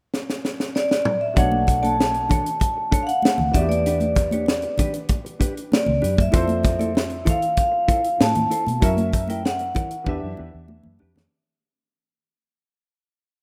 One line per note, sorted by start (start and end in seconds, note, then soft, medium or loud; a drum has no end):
0.14 snare medium
0.30 snare medium
0.45 snare medium
0.60 snare medium
0.75 1.23 D5 medium
0.75 snare medium
0.91 snare medium
1.05 mid tom medium
1.21 1.37 E5 medium
1.34 2.42 B1 loud
1.34 3.49 B2 medium
1.34 3.49 A3 soft
1.34 1.56 D4 medium
1.34 3.50 D4 medium
1.34 1.53 A4 medium
1.34 1.84 F#5 medium
1.34 kick loud
1.34 closed hi-hat medium
1.38 1.51 C#5 medium
1.38 3.51 C#5 medium
1.52 muted clean electric guitar stroke soft
1.52 high conga medium
1.67 muted clean electric guitar stroke soft
1.67 kick medium
1.67 closed hi-hat medium
1.67 muted conga soft
1.82 1.97 D4 soft
1.82 1.98 A4 soft
1.82 1.98 D5 medium
1.82 2.59 A5 medium
1.82 closed hi-hat soft
1.82 high conga medium
1.99 muted clean electric guitar stroke soft
1.99 snare medium
2.14 muted clean electric guitar stroke soft
2.14 closed hi-hat soft
2.29 2.49 D4 medium
2.29 2.45 A4 medium
2.29 2.45 C#5 medium
2.29 kick medium
2.29 closed hi-hat medium
2.29 muted conga soft
2.29 low conga medium
2.46 muted clean electric guitar stroke soft
2.46 closed hi-hat soft
2.60 3.01 A5 medium
2.60 kick medium
2.60 closed hi-hat medium
2.60 muted conga soft
2.77 muted clean electric guitar stroke soft
2.91 3.11 D4 medium
2.91 3.08 A4 medium
2.91 3.07 C#5 medium
2.91 kick medium
2.91 closed hi-hat medium
2.91 muted conga soft
3.03 3.09 F5 medium
3.07 3.55 F#5 medium
3.07 muted clean electric guitar stroke soft
3.07 closed hi-hat soft
3.22 muted clean electric guitar stroke soft
3.22 snare loud
3.22 high conga medium
3.38 3.51 D2 medium
3.38 high conga medium
3.38 low conga medium
3.52 4.64 E2 medium
3.52 5.98 E3 medium
3.52 5.99 B3 soft
3.52 3.69 D4 medium
3.52 3.61 F#4 soft
3.52 3.70 G4 medium
3.52 3.70 E5 medium
3.52 kick medium
3.52 closed hi-hat medium
3.56 3.69 B4 medium
3.56 6.00 D5 medium
3.61 6.02 G4 soft
3.69 4.90 D5 medium
3.69 muted clean electric guitar stroke soft
3.69 closed hi-hat soft
3.69 high conga medium
3.86 4.05 D4 medium
3.86 4.02 G4 medium
3.86 4.01 B4 medium
3.86 closed hi-hat medium
4.00 muted clean electric guitar stroke soft
4.00 closed hi-hat soft
4.00 high conga medium
4.16 muted clean electric guitar stroke soft
4.16 kick medium
4.16 snare soft
4.16 closed hi-hat medium
4.16 muted conga soft
4.31 4.47 D4 soft
4.31 4.48 G4 soft
4.31 4.47 C#5 medium
4.31 closed hi-hat soft
4.31 high conga medium
4.46 snare medium
4.46 muted conga soft
4.62 muted clean electric guitar stroke soft
4.62 closed hi-hat soft
4.78 4.98 D4 medium
4.78 4.95 G4 medium
4.78 4.93 B4 medium
4.78 kick medium
4.78 closed hi-hat medium
4.78 muted conga soft
4.78 low conga medium
4.94 muted clean electric guitar stroke soft
4.94 closed hi-hat soft
5.08 kick medium
5.08 closed hi-hat medium
5.08 muted conga soft
5.25 muted clean electric guitar stroke soft
5.25 closed hi-hat soft
5.40 5.59 D4 medium
5.40 5.56 G4 medium
5.40 5.54 B4 medium
5.40 kick medium
5.40 closed hi-hat medium
5.40 muted conga soft
5.55 muted clean electric guitar stroke soft
5.55 closed hi-hat soft
5.72 6.21 D5 medium
5.72 muted clean electric guitar stroke soft
5.72 snare loud
5.72 muted conga soft
5.72 high conga medium
5.86 6.00 C#2 medium
5.86 high conga medium
5.86 low conga medium
6.02 6.28 F#2 medium
6.02 6.17 D4 medium
6.02 6.17 G4 medium
6.02 6.16 B4 medium
6.02 closed hi-hat medium
6.02 muted conga soft
6.17 7.32 E5 medium
6.17 muted clean electric guitar stroke soft
6.17 kick medium
6.17 closed hi-hat soft
6.17 high conga soft
6.32 7.39 F2 medium
6.32 8.78 F3 medium
6.32 8.79 C4 medium
6.32 6.52 E4 medium
6.32 6.48 A4 medium
6.32 8.80 A4 medium
6.32 6.47 C5 medium
6.32 kick loud
6.32 closed hi-hat medium
6.32 muted conga soft
6.37 8.80 C5 medium
6.48 muted clean electric guitar stroke soft
6.48 closed hi-hat soft
6.48 high conga medium
6.63 muted clean electric guitar stroke soft
6.63 kick medium
6.63 snare soft
6.63 closed hi-hat medium
6.63 muted conga soft
6.79 6.93 E4 soft
6.79 6.94 A4 medium
6.79 6.95 D5 soft
6.79 closed hi-hat soft
6.79 high conga medium
6.95 muted clean electric guitar stroke soft
6.95 snare medium
6.95 muted conga soft
7.10 muted clean electric guitar stroke soft
7.10 closed hi-hat soft
7.25 7.45 E4 medium
7.25 7.41 A4 medium
7.25 7.40 C5 medium
7.25 kick medium
7.25 closed hi-hat medium
7.25 muted conga soft
7.25 low conga medium
7.30 7.58 F5 medium
7.41 muted clean electric guitar stroke soft
7.41 closed hi-hat soft
7.57 8.23 F5 medium
7.57 kick medium
7.57 closed hi-hat medium
7.72 muted clean electric guitar stroke soft
7.88 8.08 E4 medium
7.88 8.04 A4 medium
7.88 8.02 C5 medium
7.88 kick medium
7.88 closed hi-hat medium
7.88 muted conga soft
8.04 muted clean electric guitar stroke soft
8.04 closed hi-hat soft
8.18 8.45 A2 medium
8.18 8.85 A5 loud
8.18 muted clean electric guitar stroke soft
8.18 snare loud
8.18 muted conga soft
8.18 high conga medium
8.35 closed hi-hat soft
8.35 high conga medium
8.35 low conga medium
8.51 8.66 E4 medium
8.51 8.66 A4 medium
8.51 8.66 C5 medium
8.51 closed hi-hat medium
8.51 muted conga soft
8.66 8.79 B2 medium
8.66 muted clean electric guitar stroke soft
8.66 closed hi-hat soft
8.66 high conga medium
8.80 9.88 F#2 loud
8.80 10.04 F#3 medium
8.80 10.05 C#4 medium
8.80 9.01 E4 medium
8.80 8.98 A#4 medium
8.80 10.05 A#4 medium
8.80 8.97 C#5 medium
8.80 9.31 E5 medium
8.80 kick loud
8.80 closed hi-hat medium
8.80 muted conga soft
8.85 10.06 E5 medium
8.97 muted clean electric guitar stroke soft
8.97 closed hi-hat soft
8.97 high conga medium
9.13 muted clean electric guitar stroke soft
9.13 kick medium
9.13 closed hi-hat medium
9.13 muted conga soft
9.28 9.44 E4 soft
9.28 9.45 A#4 soft
9.28 9.44 E5 soft
9.28 9.46 G5 medium
9.28 closed hi-hat soft
9.28 high conga medium
9.45 10.04 F#5 medium
9.45 muted clean electric guitar stroke soft
9.45 snare medium
9.59 muted clean electric guitar stroke soft
9.59 closed hi-hat soft
9.75 9.95 E4 medium
9.75 9.92 A#4 medium
9.75 9.92 C#5 medium
9.75 kick medium
9.75 closed hi-hat medium
9.75 muted conga soft
9.75 low conga medium
9.91 muted clean electric guitar stroke soft
9.91 closed hi-hat soft
10.04 10.20 E2 loud
10.04 11.28 E3 medium
10.04 11.29 D4 medium
10.04 10.26 D4 medium
10.04 11.30 G4 medium
10.04 10.66 E5 medium
10.04 kick medium
10.04 muted conga soft
10.09 10.23 G4 medium
10.09 10.22 B4 medium
10.09 11.31 E5 medium
10.23 10.36 F#2 medium
10.23 muted clean electric guitar stroke soft
10.37 10.51 E2 medium
10.37 10.54 D4 soft
10.37 10.53 G4 medium
10.37 10.52 B4 medium
10.37 muted conga soft
10.53 10.79 E2 medium
10.53 muted clean electric guitar stroke soft
10.68 muted clean electric guitar stroke soft
10.68 muted conga soft
10.68 high conga medium
10.83 10.98 F#2 medium
10.83 high conga medium
10.83 low conga medium
10.99 11.26 F2 medium
10.99 11.15 D4 medium
10.99 11.15 G4 medium
10.99 11.14 B4 medium
10.99 muted conga soft
11.15 muted clean electric guitar stroke soft
11.15 snare medium
11.15 high conga medium
11.15 low conga medium